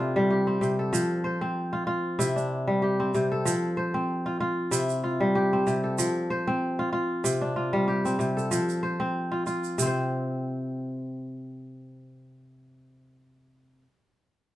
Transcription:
Already playing: kora C3 C4 D4 E4 G4 A4
0.00 kora F4
0.16 kora G3
0.30 kora G4
0.47 kora C4
0.61 kora C3, shaker
0.79 kora A4
0.93 kora F3, shaker
1.24 kora C5
1.41 kora C4
1.73 kora F4
1.87 kora F4
2.19 kora C3 E4, shaker
2.36 kora D4, shaker
2.67 kora G3
2.82 kora G4
3.00 kora C4
3.14 kora C3, shaker
3.32 kora A4
3.45 kora F3, shaker
3.77 kora C5
3.94 kora C4
4.26 kora F4
4.40 kora F4
4.71 kora C3 E4, shaker
4.89 shaker
5.04 kora F4
5.20 kora G3
5.35 kora G4
5.53 kora C4
5.67 kora C3, shaker
5.84 kora A4
5.98 kora F3, shaker
6.30 kora C5
6.47 kora C4
6.79 kora F4
6.93 kora F4
7.24 kora C3, shaker
7.41 kora D4
7.56 kora F4
7.73 kora G3
7.88 kora G4
8.05 kora C4, shaker
8.19 kora C3, shaker
8.37 kora A4, shaker
8.51 kora F3, shaker
8.69 shaker
8.83 kora C5
9.00 kora C4
9.32 kora F4
9.47 kora F4, shaker
9.64 shaker
9.78 kora C3, shaker
9.82 kora C4 C5

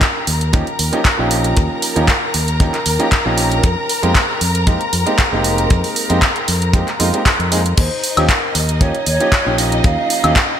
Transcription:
Already playing: violin section A#4 A#5
0.01 kick, clap, closed hi-hat
0.27 fingered electric bass D#2, open hi-hat
0.41 closed hi-hat
0.53 grand piano F3 A#3 C#4 D#4 G4, kick, closed hi-hat
0.67 closed hi-hat
0.79 fingered electric bass D#2, open hi-hat
0.92 grand piano F3 A#3 C#4 D#4 G4, closed hi-hat
1.05 kick, clap, closed hi-hat
1.17 fingered electric bass A#1, grand piano F3 A#3 C#4 D#4 G4
1.31 open hi-hat
1.44 closed hi-hat
1.57 fingered electric bass D#2, kick, closed hi-hat
1.82 open hi-hat
1.96 fingered electric bass D#2, grand piano F3 A#3 C#4 D#4 G4, closed hi-hat
2.08 kick, clap, closed hi-hat
2.34 fingered electric bass D#2, open hi-hat
2.48 closed hi-hat
2.60 grand piano F3 A#3 C#4 D#4 G4, kick, closed hi-hat
2.74 clap, closed hi-hat
2.86 fingered electric bass D#2, open hi-hat
2.99 grand piano F3 A#3 C#4 D#4 G4, closed hi-hat
3.12 kick, clap, closed hi-hat
3.25 fingered electric bass A#1, grand piano F3 A#3 C#4 D#4 G4
3.38 open hi-hat
3.52 closed hi-hat
3.63 fingered electric bass F2, kick, closed hi-hat
3.89 open hi-hat
4.02 fingered electric bass F2, grand piano G#3 A#3 C4 D#4 G4, closed hi-hat
4.15 kick, clap, closed hi-hat
4.41 fingered electric bass F2, open hi-hat
4.55 closed hi-hat
4.67 grand piano G#3 A#3 C4 D#4 G4, kick, closed hi-hat
4.81 closed hi-hat
4.93 fingered electric bass F2, open hi-hat
5.06 grand piano G#3 A#3 C4 D#4 G4, closed hi-hat
5.18 kick, clap, closed hi-hat
5.31 fingered electric bass F1, grand piano G#3 A#3 C4 D#4 G4
5.44 open hi-hat
5.58 closed hi-hat
5.70 fingered electric bass F2, kick, closed hi-hat
5.84 open hi-hat
5.96 open hi-hat
6.09 fingered electric bass F2, grand piano G#3 A#3 C4 D#4 G4, closed hi-hat
6.22 kick, clap, closed hi-hat
6.36 closed hi-hat
6.48 fingered electric bass F2, open hi-hat
6.62 closed hi-hat
6.73 grand piano G#3 A#3 C4 D#4 G4, kick, closed hi-hat
6.88 clap, closed hi-hat
6.99 fingered electric bass F2, grand piano G#3 A#3 C4 D#4 F4, open hi-hat
7.13 grand piano G#3 A#3 C4 D#4 G4, closed hi-hat
7.26 kick, clap, closed hi-hat
7.39 fingered electric bass F2, closed hi-hat
7.51 grand piano G#3 A#3 C4 D#4 G#4, open hi-hat
7.66 closed hi-hat
7.77 fingered electric bass D#2, violin section D#4 D#5, flute C5, kick, closed hi-hat, crash
8.04 open hi-hat
8.17 fingered electric bass D#2, grand piano F3 A#3 C#4 D#4 G4, closed hi-hat, high woodblock
8.29 flute A#4, kick, clap, closed hi-hat
8.55 fingered electric bass D#2, open hi-hat
8.69 closed hi-hat
8.81 grand piano F3 A#3 C#4 D#4 G4, flute C#5, kick, closed hi-hat
8.95 closed hi-hat
9.06 fingered electric bass D#2, flute C#5, open hi-hat
9.20 grand piano F3 A#3 C#4 D#4 G4, closed hi-hat
9.32 kick, clap, closed hi-hat
9.45 fingered electric bass A#1, grand piano F3 A#3 C#4 D#4 G4
9.58 flute D#5, open hi-hat
9.72 closed hi-hat
9.84 fingered electric bass D#2, flute F5, kick, closed hi-hat
10.10 open hi-hat
10.23 fingered electric bass D#2, grand piano F3 A#3 C#4 D#4 G4, closed hi-hat, high woodblock
10.36 kick, clap, closed hi-hat

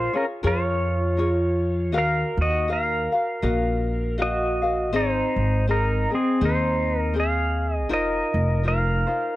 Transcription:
Already playing: pedal steel guitar F4 C5, ukulele F4 G#4 A#4
0.13 pedal steel guitar C#4 A#4, ukulele F4 G#4 C#5
0.43 upright bass F2, ukulele F4 G#4 A#4 C#5, pedal steel guitar F4
0.47 pedal steel guitar C#5
1.17 ukulele F4 G#4 A#4 C#5
1.92 upright bass D#2, ukulele F#4 A#4 D#5 F5
1.98 pedal steel guitar A#4 F5
2.37 upright bass D#2, pedal steel guitar F#4
2.42 pedal steel guitar D#5
2.68 ukulele F#4 A#4 D#5 F5
2.72 pedal steel guitar A#4 F5
3.12 ukulele F#4 A#4 F5
3.42 upright bass A#1, ukulele F#4 A#4 D#5 F5
4.18 ukulele F#4 A#4 D#5 F5, pedal steel guitar F#4
4.22 pedal steel guitar D#5
4.62 ukulele F#4 A#4 F5
4.92 upright bass G#1, ukulele C4 G#4 C5 D#5, pedal steel guitar C5
4.96 pedal steel guitar D#4
5.36 upright bass G#1
5.67 ukulele C4 G#4 C5 D#5, pedal steel guitar D#4 A#4
6.10 ukulele C4 G#4 D#5
6.14 pedal steel guitar C4 G#4
6.41 upright bass D#2, ukulele C4 G#4 C5 D#5
6.45 pedal steel guitar D#4 C5
7.00 pedal steel guitar A#4
7.14 ukulele C4 G#4 C5 D#5
7.19 pedal steel guitar G#4 F5
7.75 pedal steel guitar D#5
7.89 upright bass F1, ukulele D#4 F4 A#4 C5
7.93 pedal steel guitar A#4 D#5
8.34 upright bass F1
8.63 ukulele D#4 F4 A#4 C5
8.68 pedal steel guitar A#4 F5
9.07 ukulele D#4 F4 C5

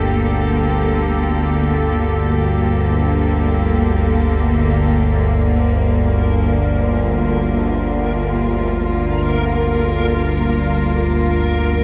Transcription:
Already playing: synth drone G1 D2, cello section D3 A#3 G4 A4
5.20 synth texture A#4
6.79 cello section F4
9.27 cello section A#4

